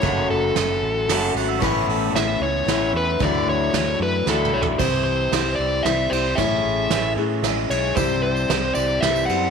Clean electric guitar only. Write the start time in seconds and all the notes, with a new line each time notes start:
0.02 F#2 C#3 F#3 A3 C#4 F#4
1.08 F#2 C#3 F#3 A3 C#4 F#4
1.61 A2 E3 B3 C#4 E4
2.68 A2 E3 B3 C#4 E4
3.21 D3 F#3 A3 D4 E4
4.27 D3 F#3 A3 D4 E4
4.81 C3
5.32 C4
5.60 E3
5.87 G3
6.12 C4
6.38 A2
6.91 C#4
7.17 E3
7.43 G#3
7.71 C#4
7.97 C3
8.48 C4
8.75 E3
9.03 G3
9.29 C4